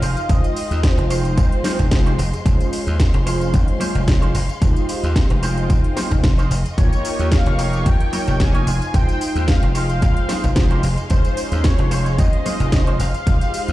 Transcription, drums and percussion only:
0.02 open hi-hat, tambourine
0.16 closed hi-hat, tambourine, shaker
0.29 kick, closed hi-hat, tambourine
0.44 closed hi-hat, tambourine, shaker
0.56 open hi-hat, tambourine
0.71 closed hi-hat, tambourine, shaker
0.83 kick, snare, closed hi-hat, tambourine, shaker
0.98 closed hi-hat, shaker
1.10 open hi-hat, tambourine
1.25 closed hi-hat, tambourine, shaker
1.37 kick, closed hi-hat, tambourine, shaker
1.52 closed hi-hat, shaker
1.64 snare, open hi-hat, tambourine, high conga, low conga
1.79 kick, closed hi-hat, tambourine, shaker
1.91 kick, snare, closed hi-hat, tambourine, shaker
2.07 closed hi-hat, shaker
2.19 open hi-hat, tambourine
2.33 closed hi-hat, tambourine, shaker
2.46 kick, closed hi-hat, tambourine, shaker
2.60 closed hi-hat, tambourine, shaker
2.73 open hi-hat, tambourine
2.87 closed hi-hat, tambourine, shaker
2.99 kick, snare, closed hi-hat, tambourine, shaker
3.14 closed hi-hat, shaker
3.27 open hi-hat, tambourine
3.41 closed hi-hat, tambourine, shaker
3.53 kick, closed hi-hat, tambourine, shaker
3.68 closed hi-hat, shaker
3.80 open hi-hat, tambourine, high conga, low conga
3.95 closed hi-hat, tambourine, shaker
4.08 kick, snare, closed hi-hat, tambourine
4.22 closed hi-hat, shaker
4.35 open hi-hat, tambourine
4.49 closed hi-hat, tambourine, shaker
4.62 kick, closed hi-hat, tambourine, shaker
4.76 closed hi-hat, tambourine
4.89 open hi-hat, tambourine
5.02 closed hi-hat, tambourine, shaker
5.15 kick, snare, closed hi-hat, tambourine, shaker
5.30 closed hi-hat, shaker
5.43 open hi-hat, tambourine
5.58 closed hi-hat, tambourine, shaker
5.70 kick, closed hi-hat, tambourine, shaker
5.84 closed hi-hat, shaker
5.97 snare, open hi-hat, tambourine, high conga, low conga
6.11 kick, closed hi-hat, tambourine, shaker
6.24 kick, snare, closed hi-hat, tambourine, shaker
6.39 closed hi-hat, tambourine, shaker
6.51 open hi-hat, tambourine
6.66 closed hi-hat, tambourine, shaker
6.78 kick, closed hi-hat, tambourine, shaker
6.93 closed hi-hat, tambourine
7.05 open hi-hat, tambourine
7.19 closed hi-hat, tambourine, shaker
7.32 kick, snare, closed hi-hat, tambourine, shaker
7.46 closed hi-hat, shaker
7.59 open hi-hat, tambourine
7.73 closed hi-hat, tambourine, shaker
7.86 kick, closed hi-hat, tambourine, shaker
8.00 closed hi-hat, shaker
8.13 open hi-hat, tambourine, high conga, low conga
8.27 closed hi-hat, tambourine, shaker
8.40 kick, snare, closed hi-hat, tambourine, shaker
8.55 closed hi-hat, shaker
8.67 open hi-hat, tambourine
8.82 closed hi-hat, tambourine, shaker
8.94 kick, closed hi-hat, tambourine, shaker
9.09 closed hi-hat, tambourine, shaker
9.21 open hi-hat, tambourine
9.36 closed hi-hat, tambourine, shaker
9.48 kick, snare, closed hi-hat, tambourine
9.63 closed hi-hat, shaker
9.75 open hi-hat, tambourine
9.89 closed hi-hat, tambourine, shaker
10.02 kick, closed hi-hat, tambourine
10.17 closed hi-hat, shaker
10.29 snare, open hi-hat, tambourine, high conga, low conga
10.44 kick, closed hi-hat, tambourine, shaker
10.56 kick, snare, closed hi-hat, tambourine, shaker
10.71 closed hi-hat, shaker
10.83 open hi-hat, tambourine
10.98 closed hi-hat, tambourine, shaker
11.10 kick, closed hi-hat, tambourine, shaker
11.25 closed hi-hat, tambourine, shaker
11.37 open hi-hat, tambourine
11.52 closed hi-hat, tambourine, shaker
11.64 kick, snare, closed hi-hat, tambourine, shaker
11.79 closed hi-hat, shaker
11.91 open hi-hat, tambourine
12.06 closed hi-hat, tambourine, shaker
12.18 kick, closed hi-hat, tambourine, shaker
12.33 closed hi-hat, shaker
12.46 open hi-hat, tambourine, high conga, low conga
12.60 closed hi-hat, tambourine, shaker
12.72 kick, snare, closed hi-hat, tambourine, shaker
12.87 closed hi-hat, shaker
13.00 open hi-hat, tambourine
13.14 closed hi-hat, tambourine, shaker
13.27 kick, closed hi-hat, tambourine, shaker
13.41 closed hi-hat, tambourine
13.54 open hi-hat, tambourine
13.68 closed hi-hat, tambourine, shaker

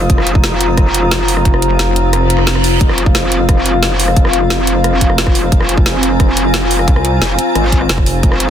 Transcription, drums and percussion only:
0.10 kick, closed hi-hat
0.18 cross-stick
0.27 closed hi-hat
0.35 kick
0.44 snare, closed hi-hat
0.61 closed hi-hat
0.78 kick, cross-stick, closed hi-hat
0.94 closed hi-hat
1.11 snare, closed hi-hat
1.28 open hi-hat
1.37 cross-stick
1.45 kick, closed hi-hat
1.54 cross-stick
1.62 closed hi-hat
1.79 snare, closed hi-hat
1.96 closed hi-hat
2.13 cross-stick, closed hi-hat
2.30 closed hi-hat
2.39 cross-stick
2.47 snare, closed hi-hat
2.55 cross-stick
2.64 open hi-hat
2.81 kick, closed hi-hat
2.89 cross-stick
2.98 closed hi-hat
3.06 kick
3.15 snare, closed hi-hat
3.32 closed hi-hat
3.49 kick, cross-stick, closed hi-hat
3.66 closed hi-hat
3.83 snare, closed hi-hat
4.00 open hi-hat
4.08 cross-stick
4.16 kick, closed hi-hat
4.25 cross-stick
4.33 closed hi-hat
4.50 snare, closed hi-hat
4.67 closed hi-hat
4.84 cross-stick, closed hi-hat
5.01 kick, closed hi-hat
5.10 cross-stick
5.18 snare, closed hi-hat
5.27 kick, cross-stick
5.35 open hi-hat
5.52 kick, closed hi-hat
5.61 cross-stick
5.69 closed hi-hat
5.77 kick
5.86 snare, closed hi-hat
6.03 closed hi-hat
6.20 kick, cross-stick, closed hi-hat
6.37 closed hi-hat
6.54 snare, closed hi-hat
6.71 open hi-hat
6.79 cross-stick
6.88 kick, closed hi-hat
6.96 cross-stick
7.05 closed hi-hat
7.22 snare, closed hi-hat
7.39 closed hi-hat
7.55 cross-stick, closed hi-hat
7.72 kick, closed hi-hat
7.81 cross-stick
7.89 snare, closed hi-hat
7.98 kick, cross-stick
8.06 open hi-hat
8.23 kick, closed hi-hat
8.32 cross-stick
8.40 closed hi-hat

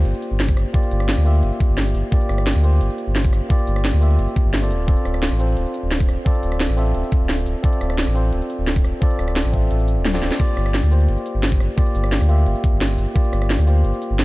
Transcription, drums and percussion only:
0.05 closed hi-hat
0.14 shaker
0.22 closed hi-hat, shaker
0.40 snare, closed hi-hat
0.49 kick, shaker
0.57 cross-stick, open hi-hat, shaker
0.74 kick, closed hi-hat
0.83 closed hi-hat, shaker
0.91 closed hi-hat, shaker
1.00 cross-stick
1.09 snare, closed hi-hat
1.17 cross-stick, closed hi-hat, shaker
1.26 closed hi-hat, shaker
1.35 closed hi-hat
1.43 closed hi-hat
1.52 shaker
1.60 kick, closed hi-hat, shaker
1.78 snare, closed hi-hat
1.86 shaker
1.95 open hi-hat, shaker
2.12 kick, closed hi-hat
2.21 closed hi-hat, shaker
2.29 cross-stick, closed hi-hat, shaker
2.38 cross-stick
2.47 snare, closed hi-hat
2.55 closed hi-hat, shaker
2.64 closed hi-hat, shaker
2.73 closed hi-hat
2.81 closed hi-hat
2.90 shaker
2.98 closed hi-hat, shaker
3.15 snare, closed hi-hat
3.24 kick, shaker
3.33 cross-stick, open hi-hat, shaker
3.50 kick, closed hi-hat
3.59 closed hi-hat, shaker
3.67 closed hi-hat, shaker
3.76 cross-stick
3.85 snare, closed hi-hat
3.93 cross-stick, closed hi-hat, shaker
4.02 closed hi-hat, shaker
4.11 closed hi-hat
4.19 closed hi-hat
4.28 shaker
4.36 kick, closed hi-hat, shaker
4.54 snare, closed hi-hat
4.62 shaker
4.71 open hi-hat, shaker
4.88 kick, closed hi-hat
4.97 closed hi-hat, shaker
5.05 cross-stick, closed hi-hat, shaker
5.14 cross-stick
5.23 snare, closed hi-hat
5.31 cross-stick, closed hi-hat, shaker
5.40 closed hi-hat, shaker
5.49 closed hi-hat
5.57 closed hi-hat
5.66 shaker
5.74 closed hi-hat, shaker
5.91 snare, closed hi-hat
6.00 kick, shaker
6.09 cross-stick, open hi-hat, shaker
6.26 kick, closed hi-hat
6.35 closed hi-hat, shaker
6.43 closed hi-hat, shaker
6.52 cross-stick
6.60 snare, closed hi-hat
6.69 cross-stick, closed hi-hat, shaker
6.78 closed hi-hat, shaker
6.86 closed hi-hat
6.95 closed hi-hat
7.04 shaker
7.12 kick, closed hi-hat, shaker
7.29 snare, closed hi-hat
7.38 shaker
7.46 open hi-hat, shaker
7.64 kick, closed hi-hat
7.73 closed hi-hat, shaker
7.81 cross-stick, closed hi-hat, shaker
7.90 cross-stick
7.98 snare, closed hi-hat
8.07 cross-stick, closed hi-hat, shaker
8.15 closed hi-hat, shaker
8.24 closed hi-hat
8.33 closed hi-hat
8.42 shaker
8.50 closed hi-hat, shaker
8.67 snare, closed hi-hat
8.76 kick, shaker
8.84 cross-stick, open hi-hat, shaker
9.02 kick, closed hi-hat
9.11 closed hi-hat, shaker
9.19 cross-stick, closed hi-hat, shaker
9.28 cross-stick
9.36 snare, closed hi-hat
9.45 closed hi-hat, shaker
9.53 kick, closed hi-hat, shaker
9.62 closed hi-hat
9.71 closed hi-hat
9.80 closed hi-hat, shaker
9.88 closed hi-hat, shaker
10.05 snare, closed hi-hat, high tom
10.14 snare, shaker
10.22 snare, open hi-hat, shaker
10.31 snare
10.40 kick, closed hi-hat, crash
10.49 closed hi-hat, shaker
10.57 cross-stick, closed hi-hat, shaker
10.66 cross-stick
10.74 snare, closed hi-hat
10.83 cross-stick, closed hi-hat, shaker
10.91 closed hi-hat, shaker
11.00 closed hi-hat
11.09 closed hi-hat
11.18 shaker
11.26 closed hi-hat, shaker
11.43 snare, closed hi-hat
11.52 kick, shaker
11.60 cross-stick, open hi-hat, shaker
11.78 kick, closed hi-hat
11.87 closed hi-hat, shaker
11.95 closed hi-hat, shaker
12.04 cross-stick
12.12 snare, closed hi-hat
12.21 cross-stick, closed hi-hat, shaker
12.29 closed hi-hat, shaker
12.38 closed hi-hat
12.46 closed hi-hat
12.55 shaker
12.64 kick, closed hi-hat, shaker
12.81 snare, closed hi-hat
12.90 shaker
12.98 open hi-hat, shaker
13.16 kick, closed hi-hat
13.25 closed hi-hat, shaker
13.33 cross-stick, closed hi-hat, shaker
13.42 cross-stick
13.50 snare, closed hi-hat
13.59 cross-stick, closed hi-hat, shaker
13.67 closed hi-hat, shaker
13.76 closed hi-hat
13.85 closed hi-hat
13.93 shaker
14.02 closed hi-hat, shaker
14.19 snare, closed hi-hat

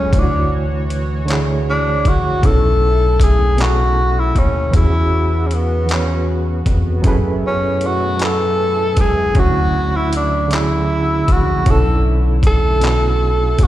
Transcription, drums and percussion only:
0.13 kick, closed hi-hat
0.90 closed hi-hat
1.28 clap, closed hi-hat
2.05 kick, closed hi-hat
2.43 kick, closed hi-hat
3.20 kick, closed hi-hat
3.58 clap, closed hi-hat
4.36 kick, closed hi-hat
4.73 kick, closed hi-hat
5.51 closed hi-hat
5.89 clap, closed hi-hat
6.66 kick, closed hi-hat
7.04 kick, closed hi-hat
7.81 closed hi-hat
8.19 clap, closed hi-hat
8.97 kick, closed hi-hat
9.35 kick, closed hi-hat
10.13 closed hi-hat
10.51 clap, closed hi-hat
11.28 kick, closed hi-hat
11.66 kick, closed hi-hat
12.43 kick, closed hi-hat
12.81 clap, closed hi-hat
13.58 kick, closed hi-hat

